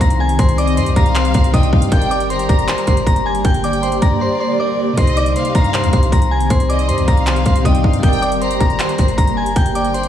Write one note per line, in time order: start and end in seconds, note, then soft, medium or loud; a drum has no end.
0.00 0.37 C2 loud
0.00 1.47 C3 medium
0.00 1.89 D#3 medium
0.00 1.49 G3 medium
0.00 4.94 G3 medium
0.00 1.89 C4 medium
0.00 1.51 D#4 medium
0.00 7.99 G4 medium
0.00 1.52 C5 medium
0.00 0.18 A#5 medium
0.00 0.19 A#6 medium
0.00 kick medium
0.00 closed hi-hat medium
0.00 downlifter medium
0.10 closed hi-hat medium
0.20 0.38 G#5 medium
0.20 0.38 G#6 medium
0.29 closed hi-hat medium
0.39 0.79 C2 loud
0.39 0.57 C5 medium
0.39 0.57 C6 medium
0.39 kick loud
0.39 closed hi-hat medium
0.49 closed hi-hat medium
0.58 0.76 D5 medium
0.58 0.94 D#5 medium
0.58 0.76 D6 medium
0.58 closed hi-hat medium
0.68 closed hi-hat medium
0.77 0.88 G2 loud
0.77 0.95 C5 medium
0.77 0.95 C6 medium
0.77 closed hi-hat medium
0.86 0.96 C2 loud
0.86 closed hi-hat medium
0.96 1.33 C2 loud
0.96 1.50 F5 medium
0.96 1.14 A#5 medium
0.96 1.14 A#6 medium
0.96 kick loud
0.96 closed hi-hat medium
0.96 open hi-hat medium
1.06 closed hi-hat soft
1.15 1.33 C5 medium
1.15 1.33 C6 medium
1.15 clap loud
1.15 closed hi-hat medium
1.25 closed hi-hat medium
1.34 1.53 C2 loud
1.34 1.52 C5 medium
1.34 1.52 C6 medium
1.34 kick medium
1.34 closed hi-hat medium
1.44 closed hi-hat medium
1.51 1.72 C2 loud
1.51 1.91 C3 medium
1.51 1.87 G3 soft
1.51 1.92 D#4 soft
1.51 1.72 D#5 medium
1.51 1.72 G5 medium
1.51 1.71 D#6 medium
1.51 kick loud
1.51 closed hi-hat medium
1.56 1.93 D5 medium
1.63 closed hi-hat soft
1.73 1.91 G2 loud
1.73 1.91 F5 medium
1.73 kick medium
1.82 closed hi-hat medium
1.88 2.47 G1 loud
1.88 4.94 D3 medium
1.88 4.53 G3 medium
1.88 4.94 A#3 medium
1.88 4.55 G4 medium
1.88 2.09 G5 medium
1.88 kick loud
1.88 closed hi-hat medium
1.92 4.56 A#4 medium
1.92 2.28 G5 loud
1.92 2.10 G6 medium
1.97 4.58 D5 medium
2.02 closed hi-hat medium
2.11 2.29 D5 medium
2.11 2.28 D6 loud
2.11 closed hi-hat medium
2.20 closed hi-hat medium
2.30 2.48 C5 medium
2.30 3.03 A#5 medium
2.30 2.48 C6 medium
2.30 closed hi-hat medium
2.39 closed hi-hat medium
2.49 2.67 G1 loud
2.49 2.67 A#5 medium
2.49 2.67 A#6 medium
2.49 kick loud
2.49 closed hi-hat medium
2.59 closed hi-hat soft
2.68 2.86 C5 medium
2.68 2.86 C6 medium
2.68 clap loud
2.68 closed hi-hat medium
2.78 closed hi-hat medium
2.87 3.06 G1 loud
2.87 3.05 C5 medium
2.87 3.05 C6 medium
2.87 kick medium
2.87 closed hi-hat medium
2.97 closed hi-hat medium
3.06 3.43 G1 loud
3.06 3.24 A#5 medium
3.06 3.24 A#6 medium
3.06 kick loud
3.06 closed hi-hat medium
3.16 closed hi-hat soft
3.26 3.43 G#5 medium
3.26 3.44 G#6 medium
3.35 closed hi-hat medium
3.45 4.00 G1 loud
3.45 3.62 G5 loud
3.45 3.63 G6 medium
3.45 kick loud
3.45 closed hi-hat medium
3.54 closed hi-hat medium
3.64 3.82 D5 medium
3.64 4.00 G5 medium
3.64 3.81 D6 medium
3.64 closed hi-hat medium
3.73 closed hi-hat medium
3.83 4.01 C5 medium
3.83 4.00 C6 medium
3.83 closed hi-hat medium
3.92 closed hi-hat medium
4.02 4.20 G2 loud
4.02 4.94 D5 medium
4.02 4.20 A#5 medium
4.02 4.20 A#6 medium
4.02 kick loud
4.02 closed hi-hat medium
4.21 4.39 C5 medium
4.21 4.39 C6 medium
4.40 4.58 C5 medium
4.40 4.58 C6 medium
4.57 4.95 G3 medium
4.57 4.97 G4 soft
4.57 4.98 A#4 soft
4.57 4.78 D5 medium
4.57 4.77 D6 medium
4.62 4.99 D5 soft
4.93 7.59 C3 medium
4.93 7.60 G3 medium
4.97 5.34 C2 loud
4.97 8.00 D#3 medium
4.97 10.08 G3 medium
4.97 8.00 C4 medium
4.97 7.62 D#4 medium
4.97 5.16 C5 medium
4.97 5.33 D#5 loud
4.97 5.15 C6 medium
4.97 kick loud
4.97 closed hi-hat loud
5.02 7.63 C5 medium
5.07 closed hi-hat medium
5.17 5.35 D5 medium
5.17 5.34 D6 medium
5.17 closed hi-hat medium
5.26 closed hi-hat medium
5.36 5.54 C5 medium
5.36 6.08 F5 medium
5.36 5.54 C6 medium
5.36 closed hi-hat medium
5.45 closed hi-hat medium
5.55 5.85 G2 loud
5.55 5.73 A#5 medium
5.55 5.73 A#6 medium
5.55 kick loud
5.55 closed hi-hat medium
5.64 closed hi-hat soft
5.74 5.92 C5 medium
5.74 5.91 C6 medium
5.74 clap loud
5.74 closed hi-hat medium
5.83 5.93 D#2 loud
5.83 closed hi-hat medium
5.93 6.11 C2 loud
5.93 6.11 C5 medium
5.93 6.11 C6 medium
5.93 kick medium
5.93 closed hi-hat medium
6.03 closed hi-hat medium
6.12 6.49 C2 loud
6.12 6.30 A#5 medium
6.12 6.30 A#6 medium
6.12 kick medium
6.12 closed hi-hat medium
6.22 closed hi-hat soft
6.31 6.49 G#5 medium
6.31 6.49 G#6 medium
6.41 closed hi-hat medium
6.50 6.90 C2 loud
6.50 6.68 C5 medium
6.50 6.68 C6 medium
6.50 kick loud
6.50 closed hi-hat medium
6.60 closed hi-hat medium
6.69 6.87 D5 medium
6.69 7.05 D#5 medium
6.69 6.87 D6 medium
6.69 closed hi-hat medium
6.79 closed hi-hat medium
6.88 7.00 G2 loud
6.88 7.06 C5 medium
6.88 7.06 C6 medium
6.88 closed hi-hat medium
6.98 7.07 C2 medium
6.98 closed hi-hat medium
7.08 7.44 C2 loud
7.08 7.62 F5 medium
7.08 7.25 A#5 medium
7.08 7.26 A#6 medium
7.08 kick loud
7.08 closed hi-hat medium
7.08 open hi-hat medium
7.17 closed hi-hat soft
7.27 7.45 C5 medium
7.27 7.44 C6 medium
7.27 clap loud
7.27 closed hi-hat medium
7.36 closed hi-hat medium
7.46 7.64 C2 loud
7.46 7.64 C5 medium
7.46 7.63 C6 medium
7.46 kick loud
7.46 closed hi-hat medium
7.56 closed hi-hat medium
7.62 7.83 C2 loud
7.62 8.02 C3 medium
7.62 7.98 G3 soft
7.62 8.04 D#4 medium
7.62 7.83 D#5 medium
7.62 7.83 G5 medium
7.62 7.83 D#6 medium
7.62 kick medium
7.62 closed hi-hat medium
7.67 8.04 D5 medium
7.75 closed hi-hat medium
7.84 8.03 G2 loud
7.84 8.02 F5 medium
7.84 kick loud
7.93 closed hi-hat medium
7.99 8.58 G1 loud
7.99 10.08 D3 medium
7.99 10.08 G3 medium
7.99 10.08 A#3 medium
7.99 10.08 G4 medium
7.99 8.21 G5 medium
7.99 kick loud
7.99 closed hi-hat medium
8.03 10.08 A#4 medium
8.03 8.39 G5 loud
8.03 8.21 G6 medium
8.09 10.08 D5 medium
8.13 closed hi-hat medium
8.22 8.40 D5 medium
8.22 8.40 D6 loud
8.22 closed hi-hat medium
8.32 closed hi-hat medium
8.42 8.59 C5 medium
8.42 9.14 A#5 medium
8.42 8.59 C6 medium
8.42 closed hi-hat medium
8.51 closed hi-hat medium
8.60 8.79 G1 loud
8.60 8.78 A#5 medium
8.60 8.78 A#6 medium
8.60 kick loud
8.60 closed hi-hat medium
8.70 closed hi-hat soft
8.79 8.98 C5 medium
8.79 8.97 C6 medium
8.79 clap loud
8.79 closed hi-hat medium
8.89 closed hi-hat medium
8.98 9.17 G1 loud
8.98 9.17 C5 medium
8.98 9.16 C6 medium
8.98 kick loud
8.98 closed hi-hat medium
9.08 closed hi-hat medium
9.18 9.55 G1 loud
9.18 9.35 A#5 medium
9.18 9.36 A#6 medium
9.18 kick medium
9.18 closed hi-hat medium
9.27 closed hi-hat soft
9.37 9.55 G#5 medium
9.37 9.55 G#6 medium
9.46 closed hi-hat medium
9.56 10.08 G1 loud
9.56 9.74 G5 loud
9.56 9.74 G6 medium
9.56 kick loud
9.56 closed hi-hat medium
9.66 closed hi-hat medium
9.75 9.93 D5 medium
9.75 10.08 G5 medium
9.75 9.93 D6 medium
9.75 closed hi-hat medium
9.85 closed hi-hat medium
9.94 10.08 C5 medium
9.94 10.08 C6 medium
9.94 closed hi-hat medium
10.03 closed hi-hat medium